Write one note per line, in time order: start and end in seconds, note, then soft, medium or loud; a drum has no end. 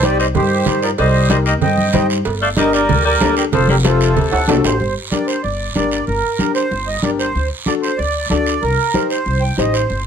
0.00 0.37 C2 loud
0.00 0.18 G3 medium
0.00 0.25 D#4 medium
0.00 0.25 G4 medium
0.00 0.18 G4 medium
0.00 0.26 C5 medium
0.00 0.18 D5 medium
0.00 cowbell medium
0.00 high conga medium
0.00 short guiro medium
0.19 0.26 G3 medium
0.19 0.27 C5 medium
0.19 0.26 D#5 medium
0.19 short guiro medium
0.35 0.61 G2 medium
0.35 0.79 D#3 medium
0.35 0.80 G4 medium
0.35 0.84 C5 medium
0.35 cowbell medium
0.35 high conga soft
0.35 low conga medium
0.35 long guiro medium
0.66 0.89 D#4 medium
0.66 0.89 G4 medium
0.66 0.89 C5 medium
0.66 cowbell medium
0.66 high conga medium
0.66 low conga medium
0.66 short guiro medium
0.82 0.90 F3 medium
0.82 0.90 A#4 medium
0.82 0.90 D5 medium
0.82 short guiro medium
0.98 1.62 C2 loud
0.98 1.28 G3 medium
0.98 1.29 C5 medium
0.98 1.29 D#5 medium
0.98 cowbell loud
0.98 high conga soft
0.98 long guiro medium
1.30 1.38 G3 medium
1.30 1.53 D#4 medium
1.30 1.53 G4 medium
1.30 1.53 A#4 medium
1.30 1.39 C5 medium
1.30 1.38 D#5 medium
1.30 cowbell medium
1.30 high conga loud
1.30 short guiro medium
1.46 1.53 A#3 medium
1.46 1.54 D#5 medium
1.46 1.53 G5 medium
1.46 short guiro medium
1.61 1.88 G2 medium
1.61 2.07 C4 medium
1.61 2.07 D#5 medium
1.61 2.06 G5 medium
1.61 cowbell medium
1.61 high conga soft
1.61 low conga medium
1.61 long guiro medium
1.77 high conga medium
1.93 2.20 G2 medium
1.93 2.16 D#4 medium
1.93 2.16 G4 medium
1.93 2.17 C5 medium
1.93 cowbell medium
1.93 high conga medium
1.93 low conga medium
1.93 short guiro medium
2.10 short guiro medium
2.25 2.91 G1 loud
2.25 cowbell loud
2.25 high conga soft
2.25 long guiro medium
2.41 2.49 A3 medium
2.41 2.49 D5 medium
2.41 2.48 F5 loud
2.57 2.72 G3 medium
2.57 2.80 D4 medium
2.57 2.80 G4 medium
2.57 2.80 A#4 medium
2.57 2.72 A#4 medium
2.57 2.72 D#5 loud
2.57 cowbell medium
2.57 high conga medium
2.57 short guiro medium
2.73 3.03 G3 medium
2.73 3.03 A#4 medium
2.73 3.04 D5 medium
2.73 short guiro medium
2.89 3.15 D2 loud
2.89 cowbell medium
2.89 high conga soft
2.89 low conga medium
2.89 long guiro medium
3.05 3.35 G3 medium
3.05 3.35 A#4 medium
3.05 3.38 D5 loud
3.20 3.47 D2 medium
3.20 3.43 D4 medium
3.20 3.43 G4 medium
3.20 3.43 A4 medium
3.20 cowbell medium
3.20 high conga medium
3.20 low timbale medium
3.20 short guiro medium
3.36 3.44 D3 medium
3.36 3.44 G4 medium
3.36 3.44 A#4 medium
3.36 short guiro medium
3.52 4.18 F1 loud
3.52 3.68 F3 medium
3.52 3.68 A4 medium
3.52 3.69 C5 medium
3.52 cowbell loud
3.52 high conga soft
3.52 low conga medium
3.52 long guiro medium
3.68 3.76 D3 medium
3.68 3.77 G4 medium
3.68 3.76 A#4 medium
3.68 high conga medium
3.84 4.61 C3 medium
3.84 4.07 C4 medium
3.84 4.07 F4 medium
3.84 4.15 F4 medium
3.84 4.07 A4 medium
3.84 4.61 A4 medium
3.84 cowbell medium
3.84 high conga loud
3.84 short guiro medium
4.01 short guiro medium
4.16 4.29 D2 loud
4.16 cowbell medium
4.16 high conga soft
4.16 low conga medium
4.16 long guiro medium
4.32 4.47 D2 medium
4.32 4.49 F#5 loud
4.32 high timbale medium
4.47 4.63 C2 medium
4.47 4.70 D4 medium
4.47 4.70 F#4 medium
4.47 4.71 A4 medium
4.47 4.56 D5 medium
4.47 cowbell medium
4.47 high conga medium
4.47 low timbale loud
4.47 short guiro medium
4.64 4.79 A1 medium
4.64 4.94 C5 medium
4.64 low timbale loud
4.64 short guiro medium
4.80 4.93 G1 medium
4.80 high conga soft
4.80 long guiro medium
5.11 5.34 D4 medium
5.11 5.34 G4 medium
5.11 5.34 A#4 medium
5.11 5.27 D5 medium
5.11 high conga medium
5.11 short guiro medium
5.27 5.42 C5 medium
5.27 short guiro medium
5.43 5.69 G1 medium
5.43 5.73 D5 medium
5.43 high conga soft
5.43 long guiro medium
5.75 6.01 G1 medium
5.75 5.98 D4 medium
5.75 5.98 G4 medium
5.75 5.98 A#4 medium
5.75 6.05 D5 medium
5.75 high conga medium
5.75 short guiro medium
5.91 short guiro medium
6.07 6.20 G1 medium
6.07 6.52 A#4 medium
6.07 high conga soft
6.07 long guiro medium
6.39 6.62 D4 medium
6.39 6.62 G4 medium
6.39 6.62 A#4 medium
6.39 high conga medium
6.39 short guiro medium
6.55 6.88 C5 medium
6.55 short guiro medium
6.71 6.97 G1 loud
6.71 high conga soft
6.71 long guiro medium
6.87 7.02 D#5 medium
7.02 7.29 G1 medium
7.02 7.25 D4 medium
7.02 7.25 G4 medium
7.02 7.26 A#4 medium
7.02 7.10 D5 medium
7.02 high conga medium
7.02 short guiro medium
7.19 7.49 C5 medium
7.19 short guiro medium
7.35 7.48 D2 medium
7.35 high conga soft
7.35 long guiro medium
7.66 7.89 D4 medium
7.66 7.89 F#4 medium
7.66 7.90 A4 medium
7.66 7.73 D5 loud
7.66 high conga medium
7.66 short guiro medium
7.82 7.99 C5 medium
7.82 short guiro medium
7.98 8.24 D2 medium
7.98 8.28 D5 medium
7.98 high conga soft
7.98 long guiro medium
8.30 8.56 D2 medium
8.30 8.53 D4 medium
8.30 8.53 F#4 medium
8.30 8.53 A4 medium
8.30 8.63 D5 medium
8.30 high conga medium
8.30 short guiro medium
8.46 short guiro medium
8.62 8.75 C2 medium
8.62 9.07 A#4 medium
8.62 high conga soft
8.62 long guiro medium
8.94 9.17 D#4 medium
8.94 9.17 G4 medium
8.94 9.17 C5 medium
8.94 high conga medium
8.94 short guiro medium
9.10 9.43 C5 medium
9.10 short guiro medium
9.26 9.52 C2 medium
9.26 high conga soft
9.26 long guiro medium
9.41 9.58 G5 medium
9.58 9.83 A1 medium
9.58 9.80 D#4 medium
9.58 9.80 G4 medium
9.58 9.81 C5 medium
9.58 9.74 D#5 medium
9.58 high conga medium
9.58 short guiro medium
9.73 10.03 C5 medium
9.73 short guiro medium
9.90 10.03 G1 medium
9.90 high conga soft
9.90 long guiro medium